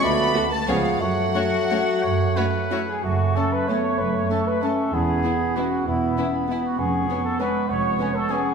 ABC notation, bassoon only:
X:1
M:3/4
L:1/8
Q:1/4=189
K:F#m
V:1 name="Bassoon"
A,3 z B,2 | A,6- | A,4- A, z | A,4 A,2- |
A,4 A,2 | B,6 | B,6 | B,4 B,2 |
B,4 B,2 |]